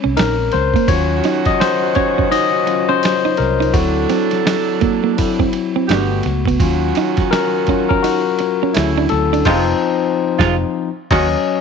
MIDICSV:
0, 0, Header, 1, 7, 480
1, 0, Start_track
1, 0, Tempo, 714286
1, 593, Time_signature, 4, 2, 24, 8
1, 7800, End_track
2, 0, Start_track
2, 0, Title_t, "Tine electric piano"
2, 0, Program_c, 0, 4
2, 0, Control_c, 0, 64, 127
2, 0, Note_on_c, 0, 56, 54
2, 0, Note_on_c, 0, 60, 50
2, 0, Note_on_c, 0, 61, 61
2, 0, Note_on_c, 0, 73, 88
2, 112, Note_on_c, 0, 70, 96
2, 221, Note_off_c, 0, 70, 0
2, 354, Note_on_c, 0, 72, 93
2, 567, Note_off_c, 0, 56, 0
2, 570, Note_off_c, 0, 60, 0
2, 571, Note_off_c, 0, 61, 0
2, 592, Note_off_c, 0, 73, 0
2, 592, Note_on_c, 0, 73, 102
2, 595, Note_on_c, 0, 54, 56
2, 598, Note_on_c, 0, 61, 52
2, 601, Note_off_c, 0, 72, 0
2, 602, Control_c, 0, 64, 0
2, 604, Note_on_c, 0, 65, 62
2, 704, Control_c, 0, 64, 127
2, 936, Note_off_c, 0, 54, 0
2, 938, Note_off_c, 0, 61, 0
2, 941, Note_off_c, 0, 65, 0
2, 984, Note_on_c, 0, 75, 109
2, 994, Note_off_c, 0, 73, 0
2, 1077, Note_off_c, 0, 75, 0
2, 1078, Note_on_c, 0, 72, 105
2, 1299, Note_off_c, 0, 72, 0
2, 1313, Note_on_c, 0, 73, 96
2, 1537, Note_off_c, 0, 73, 0
2, 1556, Note_on_c, 0, 75, 109
2, 1798, Note_on_c, 0, 54, 50
2, 1799, Note_on_c, 0, 61, 50
2, 1802, Note_on_c, 0, 65, 55
2, 1940, Note_on_c, 0, 72, 94
2, 1956, Note_off_c, 0, 75, 0
2, 2012, Note_off_c, 0, 54, 0
2, 2012, Note_off_c, 0, 61, 0
2, 2014, Note_off_c, 0, 65, 0
2, 2270, Note_on_c, 0, 70, 88
2, 2282, Note_off_c, 0, 72, 0
2, 2495, Note_off_c, 0, 70, 0
2, 2509, Note_on_c, 0, 66, 81
2, 2512, Note_on_c, 0, 54, 58
2, 2516, Note_on_c, 0, 60, 56
2, 2520, Note_on_c, 0, 64, 64
2, 2524, Control_c, 0, 64, 0
2, 2658, Control_c, 0, 64, 127
2, 2854, Note_off_c, 0, 54, 0
2, 2857, Note_off_c, 0, 60, 0
2, 2859, Note_off_c, 0, 64, 0
2, 2965, Note_off_c, 0, 66, 0
2, 3473, Note_on_c, 0, 54, 53
2, 3477, Note_on_c, 0, 60, 46
2, 3482, Note_on_c, 0, 64, 60
2, 3689, Note_off_c, 0, 54, 0
2, 3692, Note_off_c, 0, 60, 0
2, 3694, Note_off_c, 0, 64, 0
2, 3959, Note_on_c, 0, 57, 63
2, 3963, Control_c, 0, 64, 0
2, 3963, Note_on_c, 0, 59, 55
2, 3967, Note_on_c, 0, 66, 67
2, 4085, Control_c, 0, 64, 127
2, 4413, Note_off_c, 0, 57, 0
2, 4415, Note_off_c, 0, 59, 0
2, 4417, Note_off_c, 0, 66, 0
2, 4439, Note_on_c, 0, 54, 57
2, 4442, Control_c, 0, 64, 0
2, 4445, Note_on_c, 0, 61, 54
2, 4447, Note_on_c, 0, 65, 63
2, 4568, Control_c, 0, 64, 127
2, 4912, Note_on_c, 0, 70, 95
2, 5149, Note_off_c, 0, 54, 0
2, 5153, Note_off_c, 0, 61, 0
2, 5156, Note_off_c, 0, 65, 0
2, 5157, Note_on_c, 0, 54, 51
2, 5161, Note_on_c, 0, 61, 43
2, 5164, Note_on_c, 0, 65, 56
2, 5276, Note_off_c, 0, 70, 0
2, 5303, Note_on_c, 0, 70, 86
2, 5371, Note_off_c, 0, 54, 0
2, 5374, Note_off_c, 0, 61, 0
2, 5375, Note_off_c, 0, 65, 0
2, 5387, Note_off_c, 0, 70, 0
2, 5392, Note_on_c, 0, 66, 92
2, 5878, Note_on_c, 0, 54, 61
2, 5881, Note_on_c, 0, 61, 54
2, 5883, Control_c, 0, 64, 0
2, 5886, Note_on_c, 0, 64, 69
2, 5981, Control_c, 0, 64, 127
2, 6112, Note_on_c, 0, 69, 92
2, 6135, Note_off_c, 0, 66, 0
2, 6332, Note_off_c, 0, 54, 0
2, 6334, Note_off_c, 0, 61, 0
2, 6336, Note_off_c, 0, 64, 0
2, 6336, Note_off_c, 0, 69, 0
2, 6354, Note_on_c, 0, 72, 99
2, 6358, Note_on_c, 0, 53, 96
2, 6362, Note_on_c, 0, 60, 99
2, 6363, Control_c, 0, 64, 0
2, 6365, Note_on_c, 0, 63, 97
2, 6471, Control_c, 0, 64, 127
2, 6527, Note_off_c, 0, 72, 0
2, 6529, Note_off_c, 0, 53, 0
2, 6532, Note_off_c, 0, 60, 0
2, 6533, Note_off_c, 0, 63, 0
2, 7324, Control_c, 0, 64, 0
2, 7454, Control_c, 0, 64, 127
2, 7464, Note_on_c, 0, 75, 104
2, 7467, Note_on_c, 0, 54, 97
2, 7471, Note_on_c, 0, 61, 106
2, 7617, Note_off_c, 0, 75, 0
2, 7619, Note_off_c, 0, 54, 0
2, 7621, Note_off_c, 0, 61, 0
2, 7800, End_track
3, 0, Start_track
3, 0, Title_t, "Clean electric guitar"
3, 0, Program_c, 1, 27
3, 26, Note_on_c, 1, 61, 68
3, 101, Note_off_c, 1, 61, 0
3, 115, Note_on_c, 1, 63, 79
3, 241, Note_off_c, 1, 63, 0
3, 509, Note_on_c, 1, 58, 74
3, 583, Note_off_c, 1, 58, 0
3, 841, Note_on_c, 1, 63, 80
3, 964, Note_off_c, 1, 63, 0
3, 1320, Note_on_c, 1, 61, 83
3, 1444, Note_off_c, 1, 61, 0
3, 1466, Note_on_c, 1, 61, 79
3, 1541, Note_off_c, 1, 61, 0
3, 1556, Note_on_c, 1, 63, 86
3, 1681, Note_off_c, 1, 63, 0
3, 1943, Note_on_c, 1, 61, 77
3, 2019, Note_off_c, 1, 61, 0
3, 2184, Note_on_c, 1, 63, 83
3, 2260, Note_off_c, 1, 63, 0
3, 2421, Note_on_c, 1, 63, 76
3, 2498, Note_off_c, 1, 63, 0
3, 2752, Note_on_c, 1, 60, 74
3, 2879, Note_off_c, 1, 60, 0
3, 3235, Note_on_c, 1, 58, 82
3, 3361, Note_off_c, 1, 58, 0
3, 3385, Note_on_c, 1, 58, 76
3, 3460, Note_off_c, 1, 58, 0
3, 3627, Note_on_c, 1, 60, 82
3, 3702, Note_off_c, 1, 60, 0
3, 3870, Note_on_c, 1, 60, 73
3, 3943, Note_off_c, 1, 60, 0
3, 3970, Note_on_c, 1, 62, 81
3, 4089, Note_off_c, 1, 62, 0
3, 4351, Note_on_c, 1, 59, 74
3, 4424, Note_off_c, 1, 59, 0
3, 4686, Note_on_c, 1, 63, 85
3, 4807, Note_off_c, 1, 63, 0
3, 5168, Note_on_c, 1, 61, 77
3, 5288, Note_off_c, 1, 61, 0
3, 5312, Note_on_c, 1, 61, 79
3, 5385, Note_off_c, 1, 61, 0
3, 5404, Note_on_c, 1, 63, 82
3, 5526, Note_off_c, 1, 63, 0
3, 5799, Note_on_c, 1, 61, 75
3, 5869, Note_off_c, 1, 61, 0
3, 6031, Note_on_c, 1, 62, 77
3, 6104, Note_off_c, 1, 62, 0
3, 6270, Note_on_c, 1, 62, 77
3, 6343, Note_off_c, 1, 62, 0
3, 7800, End_track
4, 0, Start_track
4, 0, Title_t, "Saxophone section"
4, 0, Program_c, 2, 65
4, 590, Note_on_c, 2, 51, 73
4, 590, Note_on_c, 2, 61, 72
4, 590, Note_on_c, 2, 66, 81
4, 2245, Note_off_c, 2, 51, 0
4, 2245, Note_off_c, 2, 61, 0
4, 2245, Note_off_c, 2, 66, 0
4, 2510, Note_on_c, 2, 54, 72
4, 2510, Note_on_c, 2, 62, 72
4, 2510, Note_on_c, 2, 69, 81
4, 3688, Note_off_c, 2, 54, 0
4, 3688, Note_off_c, 2, 62, 0
4, 3688, Note_off_c, 2, 69, 0
4, 3951, Note_on_c, 2, 67, 78
4, 3952, Note_on_c, 2, 50, 66
4, 3952, Note_on_c, 2, 59, 68
4, 4188, Note_off_c, 2, 50, 0
4, 4188, Note_off_c, 2, 59, 0
4, 4188, Note_off_c, 2, 67, 0
4, 4433, Note_on_c, 2, 51, 72
4, 4433, Note_on_c, 2, 61, 76
4, 4434, Note_on_c, 2, 66, 83
4, 5609, Note_off_c, 2, 51, 0
4, 5609, Note_off_c, 2, 61, 0
4, 5610, Note_off_c, 2, 66, 0
4, 5874, Note_on_c, 2, 49, 63
4, 5874, Note_on_c, 2, 57, 71
4, 5874, Note_on_c, 2, 64, 72
4, 6109, Note_off_c, 2, 49, 0
4, 6109, Note_off_c, 2, 57, 0
4, 6109, Note_off_c, 2, 64, 0
4, 6354, Note_on_c, 2, 56, 90
4, 6355, Note_on_c, 2, 48, 85
4, 6356, Note_on_c, 2, 65, 93
4, 6484, Note_off_c, 2, 56, 0
4, 6485, Note_off_c, 2, 48, 0
4, 6485, Note_off_c, 2, 65, 0
4, 6982, Note_on_c, 2, 56, 85
4, 6982, Note_on_c, 2, 65, 92
4, 6983, Note_on_c, 2, 48, 89
4, 7097, Note_off_c, 2, 56, 0
4, 7097, Note_off_c, 2, 65, 0
4, 7098, Note_off_c, 2, 48, 0
4, 7465, Note_on_c, 2, 66, 79
4, 7466, Note_on_c, 2, 51, 89
4, 7466, Note_on_c, 2, 61, 86
4, 7579, Note_off_c, 2, 66, 0
4, 7580, Note_off_c, 2, 51, 0
4, 7580, Note_off_c, 2, 61, 0
4, 7800, End_track
5, 0, Start_track
5, 0, Title_t, "Fingered electric bass"
5, 0, Program_c, 3, 33
5, 35, Note_on_c, 3, 36, 85
5, 108, Note_off_c, 3, 36, 0
5, 125, Note_on_c, 3, 34, 90
5, 327, Note_off_c, 3, 34, 0
5, 367, Note_on_c, 3, 37, 93
5, 490, Note_off_c, 3, 37, 0
5, 597, Note_on_c, 3, 39, 99
5, 802, Note_off_c, 3, 39, 0
5, 2283, Note_on_c, 3, 36, 86
5, 2516, Note_off_c, 3, 36, 0
5, 2516, Note_on_c, 3, 38, 98
5, 2721, Note_off_c, 3, 38, 0
5, 3964, Note_on_c, 3, 31, 101
5, 4166, Note_off_c, 3, 31, 0
5, 4204, Note_on_c, 3, 37, 101
5, 4406, Note_off_c, 3, 37, 0
5, 4440, Note_on_c, 3, 39, 106
5, 4644, Note_off_c, 3, 39, 0
5, 5890, Note_on_c, 3, 38, 103
5, 6090, Note_off_c, 3, 38, 0
5, 6127, Note_on_c, 3, 38, 87
5, 6328, Note_off_c, 3, 38, 0
5, 6361, Note_on_c, 3, 29, 101
5, 6531, Note_off_c, 3, 29, 0
5, 6991, Note_on_c, 3, 29, 103
5, 7141, Note_off_c, 3, 29, 0
5, 7470, Note_on_c, 3, 39, 108
5, 7620, Note_off_c, 3, 39, 0
5, 7800, End_track
6, 0, Start_track
6, 0, Title_t, "Muted clean electric guitar strokes"
6, 363, Note_on_c, 9, 29, 43
6, 430, Note_off_c, 9, 29, 0
6, 1076, Note_on_c, 9, 29, 45
6, 1143, Note_off_c, 9, 29, 0
6, 1793, Note_on_c, 9, 29, 44
6, 1861, Note_off_c, 9, 29, 0
6, 2274, Note_on_c, 9, 29, 44
6, 2341, Note_off_c, 9, 29, 0
6, 2995, Note_on_c, 9, 29, 44
6, 3062, Note_off_c, 9, 29, 0
6, 3722, Note_on_c, 9, 29, 44
6, 3789, Note_off_c, 9, 29, 0
6, 4207, Note_on_c, 9, 29, 49
6, 4274, Note_off_c, 9, 29, 0
6, 4931, Note_on_c, 9, 29, 46
6, 4998, Note_off_c, 9, 29, 0
6, 5647, Note_on_c, 9, 29, 43
6, 5714, Note_off_c, 9, 29, 0
6, 6130, Note_on_c, 9, 29, 47
6, 6197, Note_off_c, 9, 29, 0
6, 7800, End_track
7, 0, Start_track
7, 0, Title_t, "Drums"
7, 115, Note_on_c, 9, 51, 73
7, 130, Note_on_c, 9, 38, 110
7, 183, Note_off_c, 9, 51, 0
7, 198, Note_off_c, 9, 38, 0
7, 346, Note_on_c, 9, 51, 50
7, 366, Note_on_c, 9, 38, 33
7, 414, Note_off_c, 9, 51, 0
7, 433, Note_off_c, 9, 38, 0
7, 495, Note_on_c, 9, 36, 95
7, 511, Note_on_c, 9, 51, 41
7, 562, Note_off_c, 9, 36, 0
7, 579, Note_off_c, 9, 51, 0
7, 591, Note_on_c, 9, 36, 121
7, 593, Note_on_c, 9, 51, 78
7, 659, Note_off_c, 9, 36, 0
7, 661, Note_off_c, 9, 51, 0
7, 832, Note_on_c, 9, 51, 56
7, 843, Note_on_c, 9, 38, 39
7, 899, Note_off_c, 9, 51, 0
7, 910, Note_off_c, 9, 38, 0
7, 978, Note_on_c, 9, 51, 51
7, 981, Note_on_c, 9, 36, 102
7, 989, Note_on_c, 9, 38, 38
7, 1045, Note_off_c, 9, 51, 0
7, 1048, Note_off_c, 9, 36, 0
7, 1056, Note_off_c, 9, 38, 0
7, 1085, Note_on_c, 9, 38, 114
7, 1089, Note_on_c, 9, 51, 75
7, 1152, Note_off_c, 9, 38, 0
7, 1156, Note_off_c, 9, 51, 0
7, 1311, Note_on_c, 9, 51, 49
7, 1318, Note_on_c, 9, 36, 86
7, 1378, Note_off_c, 9, 51, 0
7, 1385, Note_off_c, 9, 36, 0
7, 1471, Note_on_c, 9, 36, 97
7, 1539, Note_off_c, 9, 36, 0
7, 1560, Note_on_c, 9, 51, 74
7, 1627, Note_off_c, 9, 51, 0
7, 1795, Note_on_c, 9, 51, 57
7, 1863, Note_off_c, 9, 51, 0
7, 2036, Note_on_c, 9, 51, 75
7, 2051, Note_on_c, 9, 38, 111
7, 2103, Note_off_c, 9, 51, 0
7, 2118, Note_off_c, 9, 38, 0
7, 2266, Note_on_c, 9, 51, 49
7, 2286, Note_on_c, 9, 38, 31
7, 2334, Note_off_c, 9, 51, 0
7, 2353, Note_off_c, 9, 38, 0
7, 2434, Note_on_c, 9, 51, 39
7, 2501, Note_off_c, 9, 51, 0
7, 2511, Note_on_c, 9, 36, 115
7, 2513, Note_on_c, 9, 51, 82
7, 2578, Note_off_c, 9, 36, 0
7, 2580, Note_off_c, 9, 51, 0
7, 2752, Note_on_c, 9, 51, 58
7, 2763, Note_on_c, 9, 38, 37
7, 2819, Note_off_c, 9, 51, 0
7, 2830, Note_off_c, 9, 38, 0
7, 2897, Note_on_c, 9, 51, 51
7, 2908, Note_on_c, 9, 38, 41
7, 2964, Note_off_c, 9, 51, 0
7, 2975, Note_off_c, 9, 38, 0
7, 3002, Note_on_c, 9, 38, 124
7, 3007, Note_on_c, 9, 51, 75
7, 3070, Note_off_c, 9, 38, 0
7, 3074, Note_off_c, 9, 51, 0
7, 3234, Note_on_c, 9, 51, 50
7, 3239, Note_on_c, 9, 36, 93
7, 3301, Note_off_c, 9, 51, 0
7, 3306, Note_off_c, 9, 36, 0
7, 3482, Note_on_c, 9, 51, 70
7, 3486, Note_on_c, 9, 36, 91
7, 3549, Note_off_c, 9, 51, 0
7, 3553, Note_off_c, 9, 36, 0
7, 3625, Note_on_c, 9, 36, 89
7, 3692, Note_off_c, 9, 36, 0
7, 3716, Note_on_c, 9, 51, 57
7, 3783, Note_off_c, 9, 51, 0
7, 3958, Note_on_c, 9, 51, 72
7, 3973, Note_on_c, 9, 38, 110
7, 4026, Note_off_c, 9, 51, 0
7, 4041, Note_off_c, 9, 38, 0
7, 4188, Note_on_c, 9, 51, 53
7, 4207, Note_on_c, 9, 38, 32
7, 4255, Note_off_c, 9, 51, 0
7, 4274, Note_off_c, 9, 38, 0
7, 4338, Note_on_c, 9, 36, 99
7, 4357, Note_on_c, 9, 51, 41
7, 4405, Note_off_c, 9, 36, 0
7, 4424, Note_off_c, 9, 51, 0
7, 4433, Note_on_c, 9, 36, 119
7, 4436, Note_on_c, 9, 51, 77
7, 4501, Note_off_c, 9, 36, 0
7, 4503, Note_off_c, 9, 51, 0
7, 4672, Note_on_c, 9, 51, 53
7, 4683, Note_on_c, 9, 38, 37
7, 4739, Note_off_c, 9, 51, 0
7, 4750, Note_off_c, 9, 38, 0
7, 4818, Note_on_c, 9, 51, 50
7, 4822, Note_on_c, 9, 36, 103
7, 4829, Note_on_c, 9, 38, 43
7, 4885, Note_off_c, 9, 51, 0
7, 4890, Note_off_c, 9, 36, 0
7, 4896, Note_off_c, 9, 38, 0
7, 4924, Note_on_c, 9, 38, 121
7, 4928, Note_on_c, 9, 51, 66
7, 4991, Note_off_c, 9, 38, 0
7, 4995, Note_off_c, 9, 51, 0
7, 5152, Note_on_c, 9, 51, 54
7, 5160, Note_on_c, 9, 36, 83
7, 5219, Note_off_c, 9, 51, 0
7, 5228, Note_off_c, 9, 36, 0
7, 5314, Note_on_c, 9, 36, 94
7, 5381, Note_off_c, 9, 36, 0
7, 5403, Note_on_c, 9, 51, 75
7, 5470, Note_off_c, 9, 51, 0
7, 5636, Note_on_c, 9, 51, 57
7, 5703, Note_off_c, 9, 51, 0
7, 5877, Note_on_c, 9, 51, 72
7, 5892, Note_on_c, 9, 38, 103
7, 5944, Note_off_c, 9, 51, 0
7, 5959, Note_off_c, 9, 38, 0
7, 6109, Note_on_c, 9, 51, 52
7, 6128, Note_on_c, 9, 38, 32
7, 6176, Note_off_c, 9, 51, 0
7, 6195, Note_off_c, 9, 38, 0
7, 6275, Note_on_c, 9, 51, 43
7, 6343, Note_off_c, 9, 51, 0
7, 6352, Note_on_c, 9, 49, 86
7, 6354, Note_on_c, 9, 36, 109
7, 6363, Note_on_c, 9, 38, 112
7, 6419, Note_off_c, 9, 49, 0
7, 6421, Note_off_c, 9, 36, 0
7, 6430, Note_off_c, 9, 38, 0
7, 6984, Note_on_c, 9, 36, 108
7, 6994, Note_on_c, 9, 38, 109
7, 7051, Note_off_c, 9, 36, 0
7, 7061, Note_off_c, 9, 38, 0
7, 7463, Note_on_c, 9, 49, 89
7, 7464, Note_on_c, 9, 36, 116
7, 7475, Note_on_c, 9, 38, 106
7, 7530, Note_off_c, 9, 49, 0
7, 7531, Note_off_c, 9, 36, 0
7, 7542, Note_off_c, 9, 38, 0
7, 7800, End_track
0, 0, End_of_file